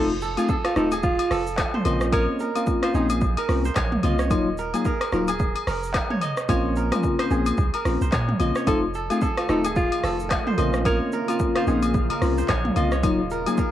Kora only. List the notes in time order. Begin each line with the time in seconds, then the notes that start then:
Already playing: C5
0.22 A4
0.38 G#4
0.49 A4
0.77 A4
0.93 G#4
1.31 A4
1.74 C5
1.86 D#5
2.13 C#5
2.40 A#4
2.84 C5
2.95 G#4
3.38 A#4
3.65 C5
3.77 C#5
4.04 D#5
4.20 C#5
4.59 A#4
4.75 G#4
4.86 A#4
5.13 A#4
5.29 G#4
5.68 A#4
6.11 C#5
6.22 D#5
6.50 C#5
6.77 A#4
7.20 C5
7.31 G#4
7.74 A#4
8.02 C5
8.13 C#5
8.41 D#5
8.56 C#5
8.95 A4
9.11 G#4
9.22 A4
9.50 A4
9.65 G#4
10.04 A4
10.47 C5
10.59 D#5
10.86 C#5
11.13 A#4
11.56 C5
11.68 G#4
12.11 A#4
12.38 C5
12.50 C#5
12.77 D#5
12.93 C#5
13.31 A#4
13.47 G#4
13.59 A#4